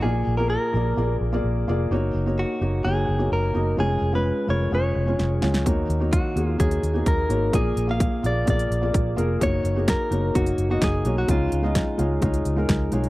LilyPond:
<<
  \new Staff \with { instrumentName = "Clean electric guitar" } { \time 4/4 \key fis \major \tempo 4 = 128 gis'8. ais'16 ais'4. r4. | r4 fis'4 gis'4 ais'4 | gis'8. b'8. cis''8 cis''4. r8 | r4 fis'4 gis'4 ais'4 |
gis'8. eis''8. d''8 d''4. r8 | cis''4 ais'4 fis'8. fis'16 gis'8. fis'16 | eis'2. r4 | }
  \new Staff \with { instrumentName = "Felt piano" } { \time 4/4 \key fis \major <ais eis' gis' d''>8. <ais eis' gis' ais'>8. <ais eis' gis' d''>8 <ais eis' gis' d''>8. <ais eis' gis' d''>8. <ais eis' gis' d''>8 | <ais dis' fis' cis''>8. <ais dis' fis' cis''>8. <ais dis' fis' cis''>8 <ais dis' fis' cis''>8. <ais dis' fis' cis''>8. <ais dis' fis' dis''>8 | <gis cis' eis' cis''>8. <gis cis' eis' cis''>8. <gis cis' eis' ais'>8 <gis cis' eis' gis'>8. <gis cis' eis' cis''>8. <gis cis' eis' cis''>8 | <ais dis' fis' cis''>8. <ais dis' fis' cis''>8. <ais dis' fis' gis'>8 <ais dis' fis' cis''>8. <ais dis' fis' gis'>8. <ais dis' fis' cis''>8 |
<ais eis' gis' d''>8. <ais eis' gis' eis''>8. <ais eis' gis' eis''>8 <ais eis' gis' d''>8. <ais eis' gis' d''>8. <ais eis' gis' ais'>8 | <ais dis' fis' cis''>8. <ais dis' fis' gis'>8. <ais dis' fis' cis''>8 <ais dis' fis' cis''>8. <ais dis' fis' dis''>8. <ais dis' fis' cis''>8 | <gis dis' eis' cis''>8. <gis dis' eis' dis''>8. <gis dis' eis' cis''>8 <gis dis' eis' cis''>8. <gis dis' eis' ais'>8. <gis dis' eis' cis''>8 | }
  \new Staff \with { instrumentName = "Felt piano" } { \clef bass \time 4/4 \key fis \major ais,4. r2 r8 | r1 | r1 | dis4. r2 r8 |
ais,4. r2 r8 | r1 | cis4. r2 r8 | }
  \new Staff \with { instrumentName = "Fingered electric bass" } { \clef bass \time 4/4 \key fis \major ais,,8 ais,,8. r16 ais,,8 ais,,8 ais,,8 ais,,8 eis,,8 | fis,,8 fis,,8. r16 fis,,8 fis,,8 fis,,8 fis,,8 fis,,8 | eis,,8 eis,,8. r16 eis,,8 eis,,8 eis,,8 eis,,8 cis,8 | dis,8 dis,8. r16 dis,8 dis,8 dis,8 dis,8 gis,,8 |
ais,,8 ais,,8. r16 ais,,8 ais,,8 ais,,8 ais,,8 eis,,8 | fis,,8 fis,,8. r16 fis,,8 fis,,8 fis,,8 fis,,8 b,,8 | cis,8 cis,8. r16 cis,8 cis,8 cis,8 cis,8 b,,8 | }
  \new DrumStaff \with { instrumentName = "Drums" } \drummode { \time 4/4 r4 r4 r4 r4 | r4 r4 r4 r4 | r4 r4 r4 sn8 sn16 sn16 | <hh bd>8 hh8 <hh bd>8 hh8 <hh bd>16 hh16 hh8 <hh bd>8 hh8 |
<hh bd>8 hh8 <hh bd>8 hh8 <hh bd>16 hh16 hh8 <hh bd>8 hh8 | <hh bd>8 hh8 <hh bd sn>8 hh8 <hh bd>16 hh16 hh8 <hh bd sn>8 hh8 | <hh bd>8 hh8 <hh bd sn>8 hh8 <hh bd>16 hh16 hh8 <hh bd sn>8 hh16 hh16 | }
>>